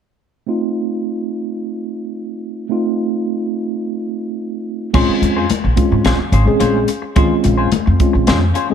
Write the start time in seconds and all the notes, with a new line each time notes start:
0.47 A3 C4 D#4 F4
2.69 A3 C4 D#4 F4
4.93 A#1 G#3 C4 C#4 F4 G#4 C5, kick, crash
5.08 muted upright bass stroke
5.22 F2, muted clean electric guitar stroke, closed hi-hat
5.36 F4 G#4 C5
5.50 muted upright bass stroke, muted clean electric guitar stroke, closed hi-hat, muted conga, high conga
5.64 A#1, muted clean electric guitar stroke
5.76 G#3 C4 C#4 F4, kick, closed hi-hat, high conga
5.92 G#2, muted clean electric guitar stroke
6.04 A#1 C#4 F4 G#4 C5, snare, closed hi-hat, muted conga
6.19 muted upright bass stroke, muted clean electric guitar stroke
6.32 G#1 C#4 F4 G#4 C5, closed hi-hat
6.46 A#1 G#3 C4 C#4 G#4, muted clean electric guitar stroke
6.60 A#1 C#4 F4 G#4 C5, closed hi-hat, high conga
6.88 muted clean electric guitar stroke, closed hi-hat
7.02 muted clean electric guitar stroke
7.16 D#2 G#3 C4 C#4 F4 G#4 C5, kick, closed hi-hat, muted conga
7.44 A#1, muted clean electric guitar stroke, closed hi-hat
7.58 F4 G#4 C5
7.72 muted clean electric guitar stroke, closed hi-hat, muted conga, high conga, low conga
7.86 F2, muted clean electric guitar stroke
8.00 G#3 C4 C#4 F4, muted upright bass stroke, kick, closed hi-hat
8.13 A#1, muted clean electric guitar stroke
8.27 F2 C#4 F4 G#4 C5, snare, closed hi-hat, muted conga, high conga
8.41 muted clean electric guitar stroke
8.54 C#4 F4 G#4 C5, closed hi-hat, muted conga
8.69 G#3 C4 C#4, muted clean electric guitar stroke